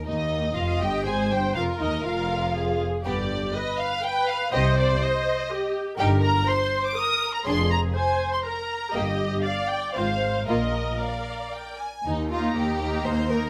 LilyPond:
<<
  \new Staff \with { instrumentName = "Violin section" } { \time 3/4 \key c \minor \tempo 4 = 121 ees''4 f''8 g''8 aes''8 g''8 | f''8 ees''8 f''4. r8 | d''4 ees''8 f''8 g''8 f''8 | ees''8 d''8 ees''4. r8 |
\key ees \major g''8 bes''8 c'''8. d'''16 ees'''8. bes''16 | c'''8 bes''8 aes''8. c'''16 bes''4 | ees''4 f''8 g''8 f''4 | ees''4 d''4. r8 |
r8 bes''4 bes''4 bes''8 | }
  \new Staff \with { instrumentName = "Viola section" } { \time 3/4 \key c \minor r4 ees''4 c''4 | bes'2 aes'4 | g'4 b'4 b'4 | c''2 g'4 |
\key ees \major bes'4 c''4 bes'4 | aes'4 c''4 bes'4 | g'4 d''4 c''4 | bes'2~ bes'8 r8 |
r8 <bes ees'>4 <bes ees'>4 <bes ees'>8 | }
  \new Staff \with { instrumentName = "Violin section" } { \time 3/4 \key c \minor ees'4 f'8 g'8 aes'8 g'8 | f'8 ees'8 f'4. r8 | <b g'>8 r2 r8 | <c' g'>8 r2 r8 |
\key ees \major <ees' g'>8 r2 r8 | <d' aes'>8 r2 r8 | <bes g'>8 r4. <c' f'>8 r8 | <bes f'>8 r8 f''4 g''8 aes''8 |
ees'8 f'8 g'4 c''8 bes'8 | }
  \new Staff \with { instrumentName = "Cello section" } { \clef bass \time 3/4 \key c \minor ees,4 f,8 g,8 aes,8 g,8 | f,8 ees,8 f,4. r8 | g,4 r2 | c4 r2 |
\key ees \major g,4 r2 | f,4 r2 | g,4 r4 aes,4 | bes,4 r2 |
ees,4 ees,4 ees,4 | }
  \new Staff \with { instrumentName = "Double bass section" } { \clef bass \time 3/4 \key c \minor ees,4 f,,8 g,,8 aes,,8 g,,8 | f,,8 ees,8 f,,4. r8 | g,,4 r2 | c,4 r2 |
\key ees \major g,,4 r2 | f,,4 r2 | g,,4 r4 aes,,4 | bes,,4 r2 |
ees,4 ees,4 ees,4 | }
>>